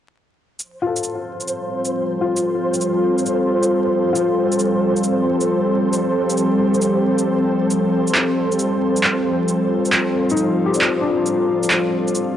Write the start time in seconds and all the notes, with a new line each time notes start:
0.59 F3 C5, shaker
0.77 C4
0.82 F4
0.87 G3 A4
0.96 shaker
1.03 shaker
1.20 F4
1.40 shaker
1.48 shaker
1.54 A4
1.85 shaker
2.21 F4
2.37 shaker
2.74 shaker
2.81 shaker
3.18 shaker
3.26 shaker
3.63 shaker
4.13 F4, shaker
4.52 shaker
4.59 shaker
4.96 shaker
5.04 shaker
5.26 G4
5.41 shaker
5.93 shaker
6.30 shaker
6.37 shaker
6.74 shaker
6.82 shaker
7.19 shaker
7.70 shaker
8.07 shaker
8.15 clap, shaker
8.39 F4
8.52 shaker
8.59 shaker
8.96 shaker
9.04 clap
9.48 shaker
9.85 shaker
9.93 clap, shaker
10.30 D#4, shaker
10.37 shaker
10.66 G4
10.71 C5, shaker
10.76 D5
10.82 clap
11.01 D4
11.26 shaker
11.63 shaker
11.70 clap, shaker
12.08 shaker
12.15 shaker